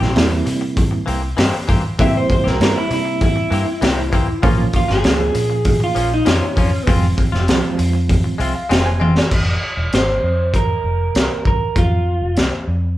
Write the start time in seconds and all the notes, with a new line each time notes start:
Already playing: G3 A#3 C4 E4
0.00 A#1 A#3 C4 G4, snare
0.16 E2 G3 A#3 C4 E4, muted clean electric guitar stroke, snare, open hi-hat
0.31 muted clean electric guitar stroke
0.46 C3, muted clean electric guitar stroke, open hi-hat
0.61 muted clean electric guitar stroke
0.77 kick, open hi-hat
0.91 muted clean electric guitar stroke
1.06 C2 E3 A#3 C4 G4, open hi-hat
1.22 muted clean electric guitar stroke
1.37 G2 E3 A#3 C4 G4, snare, open hi-hat
1.68 G2 E3 A#3 C4 G4, kick, open hi-hat
1.84 muted clean electric guitar stroke
1.99 C3 E3 G3 A#3 C4 E4 G4 E5, kick, open hi-hat
2.17 C5
2.29 C5, muted clean electric guitar stroke, kick, open hi-hat
2.44 C2 A#3 C4 G4 A#4, snare
2.60 G2 G3 A#3 C4 E4 A#4, muted clean electric guitar stroke, snare, open hi-hat
2.75 E4, muted clean electric guitar stroke
2.90 C3 E4, muted clean electric guitar stroke, open hi-hat
3.05 muted clean electric guitar stroke
3.21 E4, kick, open hi-hat
3.36 muted clean electric guitar stroke
3.51 G2 E3 A#3 C4 G4, open hi-hat
3.66 muted clean electric guitar stroke
3.81 C2 E3 A#3 C4 G4, snare, open hi-hat
4.12 E3 A#3 C4 G4, kick, open hi-hat
4.28 muted clean electric guitar stroke
4.43 A#1 F3 A#3 C#4 F4, kick, open hi-hat
4.73 F4, muted clean electric guitar stroke, kick, open hi-hat
4.88 G1 A#3 C#4 F4 G#4, snare
5.04 C#2 F3 A#3 C#4 F4, muted clean electric guitar stroke, snare, open hi-hat
5.19 muted clean electric guitar stroke
5.34 A#2, muted clean electric guitar stroke, open hi-hat
5.50 muted clean electric guitar stroke
5.65 kick, open hi-hat
5.80 F4, muted clean electric guitar stroke
5.95 A#1 F3 A#3 C#4 F4, open hi-hat
6.10 D#4, muted clean electric guitar stroke
6.25 F2 F3 A#3 C#4 F4, snare, open hi-hat
6.56 F2 F3 A#3 C#4 F4, kick, open hi-hat
6.87 F1 F3 G#3 C4 F4, kick, open hi-hat
7.17 muted clean electric guitar stroke, kick, open hi-hat
7.32 F1 C4 F4, snare
7.48 C2 F3 G#3 C4 F4, muted clean electric guitar stroke, snare, open hi-hat
7.63 muted clean electric guitar stroke
7.78 F2, muted clean electric guitar stroke, open hi-hat
7.93 muted clean electric guitar stroke
8.09 kick, open hi-hat
8.24 muted clean electric guitar stroke
8.38 C2 G#3 C4 F4 E5, open hi-hat
8.54 F5, muted clean electric guitar stroke
8.69 F1 G#3 C4 F4 G5, snare, open hi-hat
8.86 G#5
9.00 G#3 C4 F4, high tom
9.16 muted clean electric guitar stroke, snare
9.31 F1, kick, crash
9.77 E1
9.93 G#1 C5, snare, closed hi-hat
10.23 F2
10.54 A#4, kick, closed hi-hat
10.84 F1
11.15 C2, snare, closed hi-hat
11.45 C2 A#4, kick
11.76 F2 F4, kick, closed hi-hat
12.22 F1
12.37 C2, snare, closed hi-hat
12.67 F2